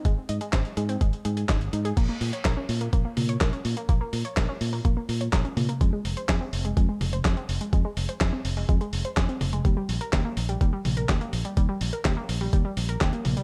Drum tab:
CC |----------------|x---------------|----------------|----------------|
HH |x-xxxxxxxxxxxxxx|x-oxx-oxx-oxxxox|x-oxx-oox-oxxxox|x-oxx-oxx-oxxxox|
CP |----x-------x---|----x-------x---|----x-------x---|----x-------x---|
SD |----o-------o---|----o-------o---|----o-------o---|----o-------o---|
T1 |----------------|----------o-----|--------------o-|----------o-----|
BD |o---o---o---o---|o---o---o---o---|o---o---o---o---|o---o---o---o---|

CC |----------------|----------------|----------------|
HH |x-oxx-ooxxoxxxox|x-oxx-oxx-oxxxox|x-oxx-oox-oxxxox|
CP |----x-------x---|----x-------x---|----x-------x---|
SD |----o-------o---|----o-------o---|----o-------o---|
T1 |--------------o-|----------o-----|--------------o-|
BD |o---o---o---o---|o---o---o---o---|o---o---o---o---|